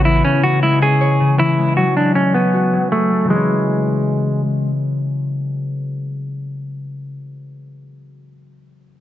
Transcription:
Already playing: A1 C#3 A3 B3
0.05 E3 E4
0.24 C#3 C#4
0.43 E3 F#4
0.63 G#3 E4
0.82 C#4 G#4
1.01 C#5
1.20 C#3
1.39 E3 E4
1.58 G#3
1.77 F#3 F#4
1.96 G#3 D4
2.15 A3 C#4
2.34 B3 C#4
2.54 F#4
2.73 F#3
2.92 A3 G#4
3.11 A3
3.24 C#3
3.28 E3 G#3
3.32 G#3 C#4

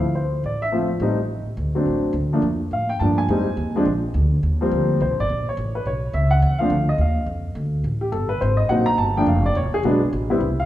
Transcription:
Already playing: D2 F5
0.15 C5
0.44 A1 D5
0.62 E5
0.72 F3 A3 C4 F4
1.00 A1 G3 A3 C4 D#4
1.46 muted upright bass stroke
1.57 D2
1.75 F#3 A3 C4 D4
1.86 A1
2.13 D2
2.33 F3 A3 A#3 D4
2.42 F2
2.71 A2 F5
2.89 G5
2.99 G2 F3 A3 A#3 D4 A5
3.18 G#5
3.28 F2 G3 G#3 C4 D#4
3.57 D#2
3.76 F3 G#3 C4 D4
3.85 A#1
4.14 D2
4.43 D#2
4.61 F3 G3 A#3 C4
4.71 D2
5.00 C2 C5
5.11 A#1
5.20 G1 D5
5.29 A#1
5.49 C#5
5.57 A1
5.75 B4
5.86 B1 C#5
6.13 C#2 E5
6.31 F#5
6.42 E2
6.59 F3 A3 C4 D4 F5
6.70 D2
6.89 D#5
6.98 D#2 F5
7.26 F2
7.55 D2
7.84 A1
8.01 G4
8.12 G1 A4
8.29 B4
8.41 G#1 C5
8.57 D#5
8.69 A#1 F#3 A#3 C4 D#4 F#5
8.86 A#5
8.98 G1 A5
9.17 F3 A3 A#3 D4 G5
9.26 F1 F5
9.46 D5
9.55 E1 C#5
9.73 G#4, muted upright bass stroke
9.83 B1 F#3 G#3 B3 D4
10.13 A1
10.30 G3 B3 C4 E4
10.41 C2
10.60 F5

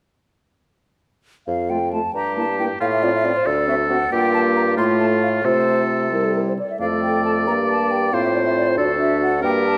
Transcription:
1.47 F2 F5
1.70 A3 F4 G5
1.93 A3 F4 A5
2.14 G2 G4 A#5
2.37 A#3 E4 A5
2.59 A#3 E4 G5
2.80 A2 F4 F5
2.92 E5
3.03 C4 F4 D5
3.15 E5
3.24 C4 F4 D5
3.37 C5
3.46 D2 A4 D5
3.68 C4 F#4 E5
3.89 C4 F#4 F#5
4.11 G2 A#3 F4 G4 G5
4.34 A5
4.56 A#5
4.77 A2 A3 F4 C6
5.00 A5
5.22 F5
5.44 C3 A3 F4 A4 C5
6.12 G3 E4 A#4
6.24 A4
6.35 A#4
6.48 C5
6.59 D5
6.70 E5
6.80 F2 A3 A4 D5 F5
7.02 G5
7.25 A5
7.47 G2 A#3 G4 A#5
7.69 A5
7.91 G5
8.13 A2 C4 F4 C5 F5
8.24 E5
8.34 D5
8.46 E5
8.57 D5
8.68 C5
8.78 D2 D4 F#4 A4 D5
9.00 E5
9.22 F#5
9.42 G2 A#3 G4 A#4 G5
9.66 A5

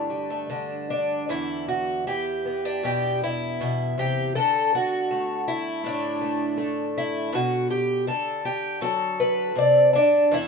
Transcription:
Already playing: G2 D3 D4
0.10 G3
0.30 A3
0.50 D3
0.90 D4
1.29 E2 E4
1.68 F#4
2.07 E3 G4
2.45 B3
2.65 D4
2.83 B2 G4
3.24 E4
3.60 B2
3.98 C3 G4
4.35 D3 A4
4.75 F#4
5.11 A3
5.48 E4
5.84 A2 D4
6.21 A3
6.57 A3
6.98 E4
7.33 B2 F#4
7.70 G4
8.07 D3 A4
8.45 G4
8.81 F#3 A4
9.20 B4
9.55 C3 D5
9.93 D3 D4
10.31 E2 E4

